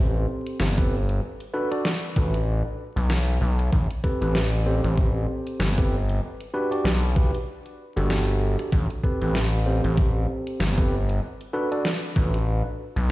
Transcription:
Already playing: A1 C4 G4 A4 C5
0.47 closed hi-hat
0.60 G1, snare
0.78 C4 G4 A4 B4, kick
1.09 closed hi-hat
1.40 closed hi-hat
1.54 D4 F#4 A4 B4, cross-stick
1.71 D4 F#4 A4 D5, closed hi-hat
1.85 snare
2.03 closed hi-hat
2.16 A1 D4 F#4 A4 B4, kick
2.34 closed hi-hat
2.96 B1, cross-stick, closed hi-hat
3.10 snare
3.41 B1
3.59 cross-stick, closed hi-hat
3.68 cross-stick
3.73 A1, kick
3.78 cross-stick
3.91 closed hi-hat
4.04 C4 G4 A4 B4, kick, cross-stick
4.21 A1 C4 G4 A4 B4, closed hi-hat
4.35 snare
4.53 closed hi-hat
4.66 C4 G4 A4 C5
4.84 A1, closed hi-hat
4.98 kick
5.47 closed hi-hat
5.60 G1, snare
5.78 C4 G4 A4 B4, kick
6.09 closed hi-hat
6.40 closed hi-hat
6.54 D4 F#4 G4 B4, cross-stick
6.71 D4 F#4 G4 D5, closed hi-hat
6.84 B1, snare
7.03 closed hi-hat
7.16 D4 F#4 G4 B4, kick
7.35 closed hi-hat
7.66 closed hi-hat
7.97 G1 D4 F#4 G4 A4, cross-stick, closed hi-hat
8.10 snare
8.59 cross-stick, closed hi-hat
8.72 A1, kick
8.90 closed hi-hat
9.04 C4 G4 A4 B4, kick, cross-stick
9.22 A1 C4 G4 A4 B4, closed hi-hat
9.35 snare
9.53 closed hi-hat
9.66 C4 G4 A4 C5
9.84 A1, closed hi-hat
9.97 kick
10.47 closed hi-hat
10.60 G1, snare
10.77 C4 G4 A4 B4, kick
11.09 closed hi-hat
11.41 closed hi-hat
11.53 D4 F#4 A4 B4, cross-stick
11.71 D4 F#4 A4 D5, closed hi-hat
11.85 snare
12.03 closed hi-hat
12.16 A1 D4 F#4 A4 B4, kick
12.34 closed hi-hat
12.96 B1, cross-stick, closed hi-hat

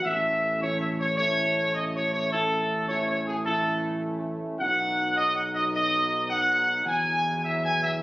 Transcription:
0.04 A1 E3 A3 C#4 E4 E5
0.60 E3 A3 C#4 E4 C#5
0.81 E5
1.00 C#5
1.17 E3 A3 C#4 E4 C#5
1.75 D#5
1.95 C#5
2.13 C#5
2.31 E3 A3 C#4 E4 A4
2.89 E3 A3 C#4 E4 C#5
3.09 C#5
3.27 G#4
3.45 E3 A3 C#4 E4 A4
4.60 B1 B2 F#3 B3 D#4 F#5
5.17 D#5
5.36 F#5
5.55 D#5
5.74 D#5
6.29 F#5
6.86 E2 E4 G#5
7.44 E5
7.65 G#5
7.83 E5

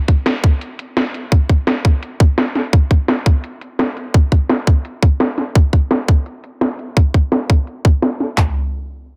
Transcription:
0.08 kick, closed hi-hat
0.26 snare, closed hi-hat
0.44 kick, closed hi-hat
0.61 closed hi-hat
0.79 closed hi-hat
0.97 snare, closed hi-hat
1.14 closed hi-hat
1.32 kick, closed hi-hat
1.50 kick, closed hi-hat
1.67 snare, closed hi-hat
1.85 kick, closed hi-hat
2.03 closed hi-hat
2.20 kick, closed hi-hat
2.38 snare, closed hi-hat
2.55 snare, closed hi-hat
2.73 kick, closed hi-hat
2.91 kick, closed hi-hat
3.08 snare, closed hi-hat
3.26 kick, closed hi-hat
3.44 closed hi-hat
3.61 closed hi-hat
3.79 snare, closed hi-hat
3.97 closed hi-hat
4.14 kick, closed hi-hat
4.32 kick, closed hi-hat
4.49 snare, closed hi-hat
4.67 kick
4.85 closed hi-hat
5.03 kick
5.20 snare, closed hi-hat
5.38 snare, closed hi-hat
5.55 kick, closed hi-hat
5.73 kick, closed hi-hat
5.91 snare, closed hi-hat
6.08 kick
6.26 closed hi-hat
6.44 closed hi-hat
6.61 snare, closed hi-hat
6.79 closed hi-hat
6.97 kick
7.14 kick
7.32 snare, closed hi-hat
7.50 kick
7.67 closed hi-hat
7.85 kick
8.02 snare, closed hi-hat
8.20 snare, closed hi-hat
8.38 kick, clap, floor tom

